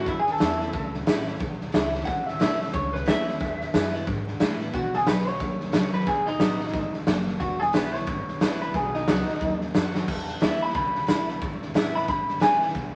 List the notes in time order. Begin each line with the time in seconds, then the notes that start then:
0.06 E2 F#2 E4, kick, snare
0.19 G#4
0.27 snare
0.31 A4
0.38 E2 E3 A3 C#4 E4, snare, hi-hat pedal
0.59 C#4 E4, snare
0.73 C#2 A2, kick, snare
0.94 snare
1.06 A1 E3 A3 C#4 E4, snare, hi-hat pedal
1.26 C#4 E4, snare
1.40 B1 E2, kick, snare
1.61 snare
1.72 C#2 E3 A3 C#4 E4, snare, hi-hat pedal
1.93 C#4 E4, snare
2.01 snare
2.05 A1 A2 F#5, kick, snare
2.26 E5, snare
2.39 B1 E3 A3 C#4 E4, snare, hi-hat pedal
2.58 C#4 E4, snare
2.68 snare
2.73 C#2 E2 C#5, kick, snare
2.93 B4, snare
3.06 D#2 E3 A3 C#4 E4 E5, snare, hi-hat pedal
3.27 C#4 E4, snare
3.40 E2, kick, snare
3.61 snare
3.74 F#2 E3 G#3 B3 E4, snare, hi-hat pedal
3.94 B3 E4, snare
4.07 G#2 B2, kick, snare
4.27 snare
4.40 A2 E3 G#3 B3 E4, snare, hi-hat pedal
4.60 B3 E4, snare
4.73 B2 F#4, kick, snare
4.93 G#4, snare
5.07 B1 F#3 B3 D#4 F#4 B4, snare, hi-hat pedal
5.26 D#4 F#4 C#5, snare
5.40 D#2 F#2, kick, snare
5.60 snare
5.72 C#2 F#3 B3 D#4 F#4, snare, hi-hat pedal
5.92 D#4 F#4 B4, muted upright bass stroke, snare
6.00 snare
6.07 B1 B2 G#4, kick, snare
6.26 D#4, snare
6.40 A1 F#3 B3 D#4 F#4, snare, hi-hat pedal
6.60 D#4 F#4, snare
6.67 snare
6.73 G#1 G#2, kick, snare
6.93 muted upright bass stroke, snare
7.07 F#1 F#2, snare, hi-hat pedal
7.27 snare
7.40 E1 E2 F#4, kick, snare
7.60 G#4, snare
7.73 B1 E3 G#3 B3 E4 B4, snare, hi-hat pedal
7.93 B3 E4 C#5, snare
8.07 G#1 B2, kick, snare
8.28 muted upright bass stroke, snare
8.41 A1 E3 G#3 B3 E4, snare, hi-hat pedal
8.61 B3 E4 B4, snare
8.74 B1 B2 G#4, kick, snare
8.94 D#4, snare
9.08 C#2 F#3 B3 D#4 F#4, snare, hi-hat pedal
9.28 D#4 F#4, snare
9.34 snare
9.41 D#2 F#2, kick, snare
9.61 snare
9.74 F#2 F#3 B3 D#4 F#4, snare, hi-hat pedal
9.94 D#4 F#4, snare
10.08 E2, kick, snare, crash
10.28 snare
10.41 D#2 E3 G#3 B3 E4 E5, snare, hi-hat pedal
10.60 B3 E4 B5, snare
10.69 snare
10.74 C#2 B2 B5, kick, snare
10.95 snare
11.07 B1 E3 G#3 B3 E4 B5, snare, hi-hat pedal
11.27 B3 E4, snare
11.42 G#1 E2, kick, snare
11.62 snare
11.74 A1 E3 G#3 B3 E4 E5, snare, hi-hat pedal
11.95 B5, snare
12.02 snare
12.08 G#1 B2 B5, kick, snare
12.28 snare
12.40 A1 E3 G#3 B3 E4 G#5, snare, hi-hat pedal
12.60 B3 E4, snare
12.69 snare
12.75 B1 E2, kick, snare